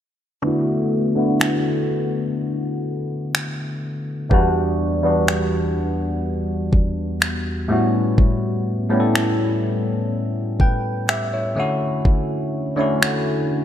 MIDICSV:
0, 0, Header, 1, 3, 480
1, 0, Start_track
1, 0, Key_signature, 2, "major"
1, 0, Tempo, 967742
1, 218, Time_signature, 4, 2, 24, 8
1, 6768, End_track
2, 0, Start_track
2, 0, Title_t, "Tine electric piano"
2, 0, Program_c, 0, 4
2, 210, Note_on_c, 0, 50, 100
2, 216, Note_on_c, 0, 57, 90
2, 221, Note_on_c, 0, 59, 84
2, 227, Note_on_c, 0, 64, 84
2, 232, Note_on_c, 0, 66, 107
2, 303, Control_c, 0, 64, 127
2, 535, Note_off_c, 0, 50, 0
2, 538, Note_off_c, 0, 57, 0
2, 541, Note_off_c, 0, 59, 0
2, 544, Note_off_c, 0, 64, 0
2, 546, Note_off_c, 0, 66, 0
2, 571, Note_on_c, 0, 50, 79
2, 576, Note_on_c, 0, 57, 68
2, 581, Note_on_c, 0, 59, 74
2, 586, Note_on_c, 0, 64, 72
2, 592, Note_on_c, 0, 66, 87
2, 1432, Note_off_c, 0, 50, 0
2, 1434, Note_off_c, 0, 57, 0
2, 1437, Note_off_c, 0, 59, 0
2, 1439, Note_off_c, 0, 64, 0
2, 1442, Note_off_c, 0, 66, 0
2, 2130, Note_on_c, 0, 40, 98
2, 2135, Note_on_c, 0, 55, 94
2, 2141, Note_on_c, 0, 59, 96
2, 2144, Control_c, 0, 64, 0
2, 2146, Note_on_c, 0, 62, 95
2, 2151, Note_on_c, 0, 66, 110
2, 2226, Control_c, 0, 64, 127
2, 2455, Note_off_c, 0, 40, 0
2, 2458, Note_off_c, 0, 55, 0
2, 2461, Note_off_c, 0, 59, 0
2, 2464, Note_off_c, 0, 62, 0
2, 2466, Note_off_c, 0, 66, 0
2, 2491, Note_on_c, 0, 40, 80
2, 2496, Note_on_c, 0, 55, 72
2, 2502, Note_on_c, 0, 59, 73
2, 2506, Note_on_c, 0, 62, 73
2, 2512, Note_on_c, 0, 66, 86
2, 3352, Note_off_c, 0, 40, 0
2, 3354, Note_off_c, 0, 55, 0
2, 3357, Note_off_c, 0, 59, 0
2, 3360, Note_off_c, 0, 62, 0
2, 3362, Note_off_c, 0, 66, 0
2, 3810, Note_on_c, 0, 45, 84
2, 3814, Note_on_c, 0, 55, 77
2, 3819, Note_on_c, 0, 59, 75
2, 3823, Note_on_c, 0, 61, 74
2, 3824, Control_c, 0, 64, 0
2, 3827, Note_on_c, 0, 64, 76
2, 3832, Note_on_c, 0, 66, 92
2, 3925, Control_c, 0, 64, 127
2, 4350, Note_off_c, 0, 45, 0
2, 4352, Note_off_c, 0, 55, 0
2, 4354, Note_off_c, 0, 59, 0
2, 4356, Note_off_c, 0, 61, 0
2, 4358, Note_off_c, 0, 64, 0
2, 4361, Note_off_c, 0, 66, 0
2, 4410, Note_on_c, 0, 45, 81
2, 4414, Note_on_c, 0, 55, 75
2, 4418, Note_on_c, 0, 59, 72
2, 4423, Note_on_c, 0, 61, 74
2, 4427, Note_on_c, 0, 64, 76
2, 4431, Note_on_c, 0, 67, 71
2, 4457, Note_off_c, 0, 67, 0
2, 4464, Note_on_c, 0, 69, 87
2, 5262, Note_on_c, 0, 79, 63
2, 5263, Note_off_c, 0, 64, 0
2, 5265, Note_on_c, 0, 71, 59
2, 5271, Note_off_c, 0, 45, 0
2, 5273, Note_off_c, 0, 55, 0
2, 5275, Note_off_c, 0, 59, 0
2, 5278, Note_off_c, 0, 61, 0
2, 5281, Note_off_c, 0, 69, 0
2, 5488, Note_off_c, 0, 79, 0
2, 5489, Note_off_c, 0, 71, 0
2, 5501, Note_on_c, 0, 76, 68
2, 5504, Note_on_c, 0, 67, 57
2, 5614, Note_off_c, 0, 76, 0
2, 5615, Note_off_c, 0, 67, 0
2, 5621, Note_on_c, 0, 73, 62
2, 5624, Note_on_c, 0, 64, 52
2, 5730, Note_on_c, 0, 50, 79
2, 5736, Note_on_c, 0, 57, 77
2, 5740, Note_off_c, 0, 64, 0
2, 5741, Note_on_c, 0, 61, 74
2, 5743, Control_c, 0, 64, 0
2, 5746, Note_on_c, 0, 64, 72
2, 5752, Note_on_c, 0, 66, 92
2, 5839, Control_c, 0, 64, 127
2, 5847, Note_off_c, 0, 73, 0
2, 6270, Note_off_c, 0, 50, 0
2, 6273, Note_off_c, 0, 57, 0
2, 6275, Note_off_c, 0, 61, 0
2, 6278, Note_off_c, 0, 64, 0
2, 6281, Note_off_c, 0, 66, 0
2, 6330, Note_on_c, 0, 50, 84
2, 6335, Note_on_c, 0, 57, 75
2, 6340, Note_on_c, 0, 61, 78
2, 6346, Note_on_c, 0, 64, 74
2, 6351, Note_on_c, 0, 66, 88
2, 6768, Note_off_c, 0, 50, 0
2, 6768, Note_off_c, 0, 57, 0
2, 6768, Note_off_c, 0, 61, 0
2, 6768, Note_off_c, 0, 64, 0
2, 6768, Note_off_c, 0, 66, 0
2, 6768, End_track
3, 0, Start_track
3, 0, Title_t, "Drums"
3, 700, Note_on_c, 9, 26, 105
3, 750, Note_off_c, 9, 26, 0
3, 1660, Note_on_c, 9, 26, 98
3, 1710, Note_off_c, 9, 26, 0
3, 2137, Note_on_c, 9, 36, 103
3, 2187, Note_off_c, 9, 36, 0
3, 2621, Note_on_c, 9, 26, 101
3, 2670, Note_off_c, 9, 26, 0
3, 3336, Note_on_c, 9, 36, 88
3, 3386, Note_off_c, 9, 36, 0
3, 3581, Note_on_c, 9, 26, 96
3, 3630, Note_off_c, 9, 26, 0
3, 4057, Note_on_c, 9, 36, 107
3, 4107, Note_off_c, 9, 36, 0
3, 4541, Note_on_c, 9, 26, 107
3, 4590, Note_off_c, 9, 26, 0
3, 5257, Note_on_c, 9, 36, 91
3, 5306, Note_off_c, 9, 36, 0
3, 5501, Note_on_c, 9, 26, 99
3, 5550, Note_off_c, 9, 26, 0
3, 5977, Note_on_c, 9, 36, 107
3, 6027, Note_off_c, 9, 36, 0
3, 6461, Note_on_c, 9, 26, 104
3, 6510, Note_off_c, 9, 26, 0
3, 6768, End_track
0, 0, End_of_file